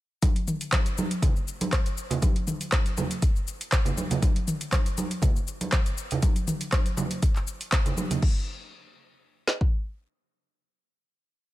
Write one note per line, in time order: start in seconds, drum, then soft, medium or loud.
0.22 kick loud
0.22 closed hi-hat medium
0.22 high conga loud
0.22 cabasa medium
0.36 closed hi-hat soft
0.48 mid tom medium
0.48 cabasa medium
0.61 closed hi-hat soft
0.61 cabasa soft
0.72 kick loud
0.72 cross-stick loud
0.72 clap loud
0.72 closed hi-hat medium
0.72 high conga medium
0.72 cabasa medium
0.86 closed hi-hat soft
0.86 cabasa soft
0.98 high conga loud
0.98 cabasa loud
1.11 closed hi-hat soft
1.11 cabasa soft
1.22 kick loud
1.22 closed hi-hat medium
1.22 low conga medium
1.22 cabasa medium
1.36 cabasa soft
1.48 cabasa medium
1.61 closed hi-hat soft
1.61 high conga medium
1.61 cabasa soft
1.72 kick loud
1.72 cross-stick loud
1.72 clap loud
1.72 closed hi-hat medium
1.72 cabasa medium
1.86 closed hi-hat soft
1.86 cabasa soft
1.97 cabasa loud
2.10 closed hi-hat soft
2.10 low conga loud
2.10 cabasa soft
2.22 kick loud
2.22 closed hi-hat medium
2.22 high conga loud
2.22 cabasa medium
2.36 closed hi-hat soft
2.47 mid tom medium
2.47 high conga medium
2.47 cabasa medium
2.61 closed hi-hat soft
2.61 cabasa soft
2.72 kick loud
2.72 cross-stick loud
2.72 clap loud
2.72 closed hi-hat medium
2.72 high conga medium
2.72 cabasa medium
2.86 closed hi-hat soft
2.86 cabasa soft
2.97 high conga loud
2.97 low conga medium
2.97 cabasa loud
3.11 closed hi-hat soft
3.11 cabasa soft
3.22 kick loud
3.22 closed hi-hat medium
3.22 cabasa medium
3.36 cabasa soft
3.47 cabasa loud
3.61 closed hi-hat soft
3.61 cabasa soft
3.72 kick loud
3.72 cross-stick loud
3.72 clap loud
3.72 closed hi-hat medium
3.72 cabasa medium
3.85 closed hi-hat soft
3.85 low conga loud
3.85 cabasa soft
3.97 high conga loud
3.97 cabasa loud
4.11 closed hi-hat soft
4.11 low conga loud
4.11 cabasa soft
4.22 kick loud
4.22 closed hi-hat medium
4.22 high conga loud
4.22 cabasa medium
4.36 closed hi-hat soft
4.47 mid tom medium
4.47 cabasa loud
4.61 closed hi-hat soft
4.61 cabasa soft
4.72 kick loud
4.72 cross-stick loud
4.72 clap loud
4.72 closed hi-hat medium
4.72 high conga medium
4.72 cabasa medium
4.86 closed hi-hat soft
4.86 cabasa soft
4.97 high conga loud
4.97 cabasa loud
5.11 closed hi-hat soft
5.11 cabasa soft
5.22 kick loud
5.22 closed hi-hat medium
5.22 low conga medium
5.22 cabasa medium
5.36 cabasa soft
5.47 cabasa loud
5.61 closed hi-hat soft
5.61 high conga medium
5.61 cabasa soft
5.72 kick loud
5.72 cross-stick loud
5.72 clap loud
5.72 closed hi-hat medium
5.72 cabasa medium
5.86 closed hi-hat soft
5.86 cabasa soft
5.97 cabasa loud
6.11 closed hi-hat soft
6.11 low conga loud
6.11 cabasa soft
6.22 kick loud
6.22 closed hi-hat medium
6.22 high conga loud
6.22 cabasa medium
6.36 closed hi-hat soft
6.36 cabasa soft
6.47 mid tom loud
6.47 high conga medium
6.47 cabasa loud
6.61 closed hi-hat soft
6.61 cabasa soft
6.72 kick loud
6.72 cross-stick loud
6.72 clap loud
6.72 closed hi-hat medium
6.72 high conga medium
6.72 cabasa medium
6.86 closed hi-hat soft
6.86 cabasa soft
6.97 high conga loud
6.97 low conga medium
6.97 cabasa loud
7.11 closed hi-hat soft
7.11 cabasa soft
7.22 kick loud
7.22 closed hi-hat medium
7.22 cabasa medium
7.36 clap soft
7.36 cabasa soft
7.47 cabasa loud
7.61 closed hi-hat soft
7.61 cabasa soft
7.72 kick loud
7.72 cross-stick loud
7.72 clap loud
7.72 closed hi-hat medium
7.72 cabasa medium
7.86 closed hi-hat soft
7.86 low conga medium
7.86 cabasa soft
7.97 high conga loud
7.97 cabasa loud
8.11 closed hi-hat soft
8.11 low conga loud
8.11 cabasa soft
8.22 kick loud
8.22 crash medium
9.47 snare medium
9.61 kick medium